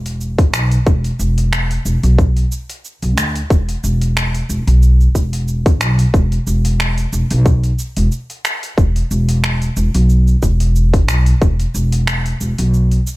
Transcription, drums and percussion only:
0.06 open hi-hat soft
0.06 cabasa soft
0.21 cabasa soft
0.38 kick loud
0.38 open hi-hat soft
0.38 cabasa soft
0.54 finger snap medium
0.54 cabasa medium
0.72 open hi-hat medium
0.72 cabasa soft
0.87 kick loud
0.87 cabasa soft
1.04 open hi-hat soft
1.04 cabasa soft
1.20 cabasa medium
1.38 open hi-hat soft
1.38 cabasa soft
1.53 finger snap medium
1.53 cabasa soft
1.71 open hi-hat soft
1.71 cabasa soft
1.86 cabasa medium
2.03 open hi-hat soft
2.03 cabasa soft
2.18 kick loud
2.18 cabasa soft
2.37 open hi-hat soft
2.37 cabasa soft
2.52 cabasa medium
2.70 open hi-hat soft
2.70 cabasa soft
2.85 cabasa soft
3.02 open hi-hat soft
3.02 cabasa soft
3.18 finger snap medium
3.18 cabasa medium
3.36 open hi-hat medium
3.36 cabasa soft
3.50 kick loud
3.50 cabasa soft
3.69 open hi-hat soft
3.69 cabasa soft
3.84 cabasa medium
4.02 open hi-hat soft
4.02 cabasa soft
4.17 finger snap medium
4.17 cabasa soft
4.35 open hi-hat soft
4.35 cabasa soft
4.50 cabasa medium
4.68 open hi-hat medium
4.68 cabasa soft
4.83 cabasa soft
5.01 cabasa soft
5.15 kick medium
5.15 cabasa medium
5.33 open hi-hat soft
5.33 cabasa soft
5.48 cabasa soft
5.66 kick loud
5.66 open hi-hat soft
5.66 cabasa soft
5.81 finger snap medium
5.81 cabasa medium
5.99 open hi-hat soft
5.99 cabasa soft
6.14 kick loud
6.14 cabasa soft
6.32 open hi-hat soft
6.32 cabasa soft
6.47 cabasa medium
6.65 open hi-hat soft
6.65 cabasa soft
6.80 finger snap medium
6.80 cabasa soft
6.98 open hi-hat soft
6.98 cabasa soft
7.13 cabasa medium
7.31 open hi-hat medium
7.31 cabasa soft
7.46 kick loud
7.46 cabasa soft
7.64 open hi-hat soft
7.64 cabasa soft
7.79 cabasa medium
7.97 open hi-hat medium
7.97 cabasa soft
8.12 cabasa soft
8.30 open hi-hat soft
8.30 cabasa soft
8.45 finger snap medium
8.45 cabasa medium
8.63 open hi-hat medium
8.63 cabasa soft
8.78 kick loud
8.78 cabasa soft
8.96 open hi-hat soft
8.96 cabasa soft
9.11 cabasa medium
9.29 open hi-hat soft
9.29 cabasa soft
9.44 finger snap medium
9.44 cabasa soft
9.62 open hi-hat soft
9.62 cabasa soft
9.77 cabasa medium
9.94 open hi-hat medium
9.94 cabasa soft
10.09 cabasa soft
10.28 cabasa soft
10.43 kick medium
10.43 cabasa medium
10.60 open hi-hat medium
10.60 cabasa soft
10.76 cabasa soft
10.94 kick loud
10.94 open hi-hat soft
10.94 cabasa soft
11.08 finger snap medium
11.08 cabasa medium
11.26 open hi-hat medium
11.26 cabasa soft
11.42 kick loud
11.42 cabasa soft
11.60 open hi-hat soft
11.60 cabasa soft
11.75 cabasa medium
11.92 open hi-hat medium
11.92 cabasa soft
12.07 finger snap medium
12.07 cabasa soft
12.26 open hi-hat soft
12.26 cabasa soft
12.41 cabasa medium
12.58 open hi-hat medium
12.58 cabasa soft
12.74 cabasa soft
12.91 open hi-hat soft
12.91 cabasa soft
13.07 cabasa medium

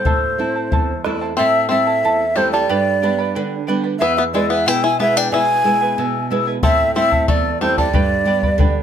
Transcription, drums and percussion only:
0.05 bombo low medium
0.72 bombo low medium
1.05 bombo rim soft
6.63 bombo low medium
7.12 bombo low medium
7.28 bombo low medium
7.77 bombo low medium
7.94 bombo low medium
8.43 bombo low medium
8.59 bombo low medium

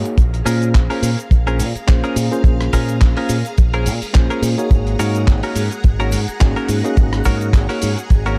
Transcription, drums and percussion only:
0.05 closed hi-hat soft
0.05 cabasa medium
0.18 kick loud
0.18 closed hi-hat medium
0.18 cabasa soft
0.18 shaker soft
0.34 closed hi-hat soft
0.34 shaker soft
0.46 open hi-hat loud
0.46 cabasa medium
0.46 shaker medium
0.62 closed hi-hat soft
0.62 cabasa soft
0.62 shaker soft
0.75 kick loud
0.75 clap loud
0.75 closed hi-hat medium
0.75 cabasa soft
0.75 shaker soft
0.90 open hi-hat medium
0.90 shaker soft
1.03 open hi-hat loud
1.03 cabasa medium
1.03 shaker medium
1.19 closed hi-hat soft
1.19 cabasa soft
1.19 shaker soft
1.31 kick loud
1.31 closed hi-hat medium
1.31 cabasa soft
1.31 shaker soft
1.47 closed hi-hat soft
1.47 shaker soft
1.59 open hi-hat loud
1.59 cabasa medium
1.59 shaker medium
1.76 closed hi-hat soft
1.76 cabasa soft
1.76 shaker soft
1.88 kick loud
1.88 clap loud
1.88 closed hi-hat medium
1.88 cabasa soft
1.88 shaker soft
2.04 closed hi-hat soft
2.04 shaker soft
2.16 open hi-hat loud
2.16 cabasa medium
2.16 shaker medium
2.32 closed hi-hat soft
2.32 cabasa medium
2.32 shaker soft
2.44 kick loud
2.44 closed hi-hat medium
2.44 cabasa soft
2.44 shaker soft
2.61 cross-stick medium
2.61 closed hi-hat soft
2.61 shaker soft
2.73 kick medium
2.73 open hi-hat loud
2.73 cabasa medium
2.73 shaker medium
2.89 closed hi-hat soft
2.89 cabasa medium
2.89 shaker soft
3.01 kick loud
3.01 clap loud
3.01 closed hi-hat medium
3.01 cabasa soft
3.01 shaker soft
3.17 open hi-hat medium
3.17 shaker soft
3.29 open hi-hat loud
3.29 cabasa medium
3.29 shaker medium
3.45 closed hi-hat soft
3.45 cabasa medium
3.45 shaker soft
3.58 kick loud
3.58 closed hi-hat medium
3.58 cabasa soft
3.58 shaker soft
3.73 closed hi-hat soft
3.73 shaker soft
3.86 open hi-hat loud
3.86 cabasa loud
3.86 shaker medium
4.02 open hi-hat medium
4.02 cabasa soft
4.02 shaker soft
4.14 kick loud
4.14 clap loud
4.14 closed hi-hat medium
4.14 cabasa soft
4.14 shaker soft
4.30 closed hi-hat soft
4.30 shaker soft
4.43 open hi-hat loud
4.43 cabasa loud
4.43 shaker medium
4.58 closed hi-hat soft
4.58 cabasa soft
4.58 shaker soft
4.71 kick loud
4.71 closed hi-hat medium
4.71 cabasa soft
4.71 shaker soft
4.87 closed hi-hat soft
4.87 shaker soft
4.99 open hi-hat loud
4.99 cabasa loud
4.99 shaker medium
5.15 closed hi-hat soft
5.15 cabasa medium
5.15 shaker soft
5.27 kick loud
5.27 clap loud
5.27 closed hi-hat medium
5.27 cabasa soft
5.27 shaker soft
5.43 open hi-hat medium
5.43 shaker soft
5.55 open hi-hat loud
5.55 cabasa medium
5.55 shaker medium
5.71 closed hi-hat soft
5.71 cabasa medium
5.71 shaker soft
5.84 kick loud
5.84 closed hi-hat medium
5.84 cabasa soft
5.84 shaker soft
6.00 closed hi-hat soft
6.00 shaker soft
6.12 open hi-hat loud
6.12 cabasa loud
6.12 shaker medium
6.28 closed hi-hat soft
6.28 cabasa medium
6.28 shaker soft
6.40 kick loud
6.40 clap loud
6.40 closed hi-hat medium
6.40 cabasa soft
6.40 shaker soft
6.56 closed hi-hat soft
6.56 shaker soft
6.68 open hi-hat loud
6.68 cabasa medium
6.68 shaker medium
6.84 closed hi-hat soft
6.84 cabasa medium
6.84 shaker soft
6.97 kick loud
6.97 closed hi-hat medium
6.97 cabasa soft
6.97 shaker soft
7.13 cross-stick medium
7.13 closed hi-hat soft
7.13 shaker soft
7.24 kick medium
7.24 open hi-hat loud
7.24 cabasa medium
7.24 shaker medium
7.41 closed hi-hat soft
7.41 cabasa medium
7.41 shaker soft
7.53 kick loud
7.53 clap loud
7.53 closed hi-hat medium
7.53 cabasa soft
7.53 shaker soft
7.69 open hi-hat medium
7.69 shaker soft
7.82 open hi-hat loud
7.82 cabasa medium
7.82 shaker medium
7.97 closed hi-hat soft
7.97 cabasa medium
7.97 shaker soft
8.10 kick loud
8.10 closed hi-hat medium
8.10 cabasa soft
8.10 shaker soft
8.26 closed hi-hat soft
8.26 shaker soft

